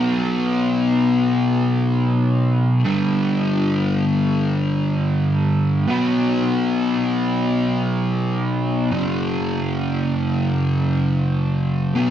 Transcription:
distorted electric guitar
Already playing: B2 F#3 B3
2.85 G2 D3 G3
5.88 B2 F#3 B3
8.91 F#2 C#3 F#3
11.95 B2 F#3 B3

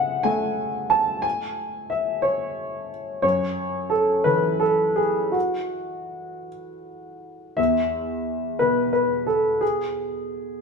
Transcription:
grand piano
Already playing: C#3 E5 F#5
0.23 A3 G#5
0.90 A5
1.22 G#5
1.90 E5
2.22 C#5
3.22 F#2 C#5
3.90 A4
4.24 E3 B4
4.60 A4
4.96 G#4
5.32 F#4
7.57 E2 E5
8.59 B2 B4
8.93 B4
9.27 A4
9.61 G#4

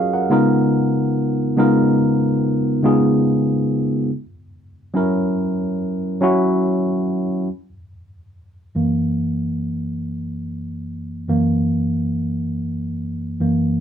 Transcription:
tine electric piano
Already playing: F#3 C#4 F4 F#4 G#4 A4 A#4 C#5 D#5 F5
0.14 A#4 F#5
0.30 C#3 G#3 B3 D#4 F4 A#4
1.57 C#3 G#3 B3 D#4 F4 A#4
2.83 C#3 G#3 B3 D#4 F4 G#4
4.94 F#3 C#4 E4 A#4
6.21 F#3 C#4 E4 F#4
8.75 F#2 E3 A#3
11.28 F#2 E3 A#3
13.40 F#2 E3 A#3

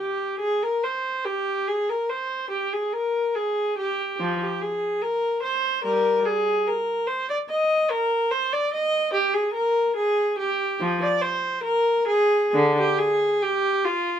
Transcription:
viola
Already playing: G4
0.39 G#4
0.62 A#4
0.83 C5
1.24 G4
1.68 G#4
1.89 A#4
2.10 C5
2.50 G4
2.73 G#4
2.92 A#4
3.35 G#4
3.78 G4
4.20 F3
4.42 G4
4.61 G#4
5.02 A#4
5.43 C5
5.83 G3 A#4
6.25 G#4
6.67 A#4
7.07 C5
7.30 D5
7.49 D#5
7.90 A#4
8.31 C5
8.52 D5
8.74 D#5
9.13 G4
9.34 G#4
9.54 A#4
9.96 G#4
10.38 G4
10.80 F3
11.02 D5
11.22 C5
11.63 A#4
12.07 G#4
12.54 D3
12.79 G4
12.98 G#4
13.42 G4
13.85 F4

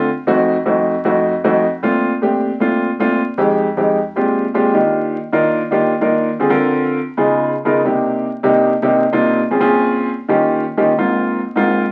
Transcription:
grand piano
0.27 F2 A3 C4 D#4 F#4
0.66 F2 A3 C4 D#4 F#4
1.05 F2 A3 C4 D#4 F#4
1.44 F2 A3 C4 D#4 F#4
1.83 A#2 A3 C4 D4 F4
2.21 A#2 A3 C4 D4 G4
2.60 A#2 A3 C4 D4 F4
3.00 A#2 A3 C4 D4 F4
3.38 F2 G#3 D#4 G4
3.77 F2 G#3 D#4 G4
4.16 A#2 G#3 C4 D4 F4 G4
4.54 A#2 G#3 C4 D4 F4 G4
4.74 D#3 A#3 D4 F4 G4
5.32 D#3 A#3 D4 F4 A#4
5.71 D#3 A#3 D4 F4 G4
6.01 D#3 A#3 D4 F4 A#4
6.39 D3 C4 F4 G#4
6.49 D3 C4 F4 A#4
7.17 C#3 B3 D#4 F4 G#4
7.65 C#3 B3 D#4 F4 A#4
7.85 C3 A#3 D4 D#4 G4
8.43 C3 A#3 D4 D#4 G4
8.82 C3 A#3 D4 D#4 G4
9.12 C3 A#3 D4 D#4 F4
9.51 A#2 C4 C#4 F4 G#4
9.60 A#2 C4 C#4 F4 G#4
10.29 D#3 A#3 C#4 F4 G4
10.77 D#3 A#3 C#4 F4 G4
10.98 G#2 A#3 C4 F4
11.56 G#2 A#3 C4 F4

